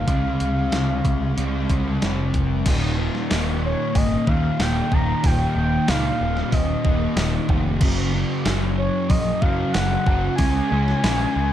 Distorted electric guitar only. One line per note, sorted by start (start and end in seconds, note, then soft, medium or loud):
0.08 1.35 C#3 loud
0.08 1.36 G#3 medium
0.08 1.36 C#4 medium
1.37 2.64 C#3 medium
1.37 2.65 G#3 medium
1.37 2.65 C#4 medium
2.66 3.30 D#2 medium
2.66 2.99 A#2 medium
2.66 2.98 D#3 loud
2.98 3.29 A#2 medium
2.98 3.31 D#3 medium
3.30 4.58 D#2 medium
3.30 4.28 A#2 medium
3.30 4.27 D#3 medium
4.28 4.59 A#2 medium
4.28 4.61 D#3 medium
4.60 5.22 D#2 medium
4.60 4.93 A#2 medium
4.60 4.91 D#3 medium
4.92 5.24 A#2 medium
4.92 5.24 D#3 medium
5.24 5.87 D#2 loud
5.24 5.57 A#2 loud
5.24 5.55 D#3 loud
5.57 5.88 A#2 medium
5.57 5.89 D#3 medium
5.88 7.16 D#2 medium
5.88 6.86 A#2 medium
5.88 6.84 D#3 medium
6.85 7.17 A#2 medium
6.85 7.18 D#3 medium
7.18 7.80 D#2 medium
7.18 7.51 A#2 medium
7.18 7.48 D#3 medium
7.49 7.81 A#2 medium
7.49 7.80 D#3 medium
7.82 8.45 F#2 loud
7.82 8.14 C#3 loud
7.82 8.12 F#3 loud
8.14 8.46 C#3 medium
8.14 8.46 F#3 medium
8.46 9.73 F#2 medium
8.46 9.43 C#3 medium
8.46 9.41 F#3 medium
9.43 9.74 C#3 medium
9.43 9.75 F#3 medium
9.74 10.37 F#2 medium
9.74 10.07 C#3 medium
9.74 10.05 F#3 medium
10.07 10.37 C#3 medium
10.07 10.37 F#3 medium
10.38 11.02 C#3 loud
10.38 10.71 G#3 loud
10.38 10.69 C#4 loud
10.71 11.03 G#3 medium
10.71 11.04 C#4 medium
11.03 11.53 C#3 medium
11.03 11.53 G#3 medium
11.03 11.53 C#4 medium